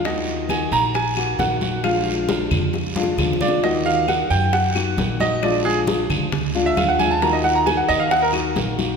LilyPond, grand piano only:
\new Staff \with { instrumentName = "Grand piano" } { \time 4/4 \key ees \minor \tempo 4 = 134 ees''4 aes''8 bes''8 aes''4 ges''4 | f''4. r2 d''8 | ees''8 f''8 ges''8 g''8 ges''4. ees''8 | d''8 aes'8 r4. r16 fes''16 f''16 ges''16 aes''16 a''16 |
bes''16 ees''16 ges''16 bes''16 aes''16 ges''16 ees''16 f''16 ges''16 bes'16 r4. | }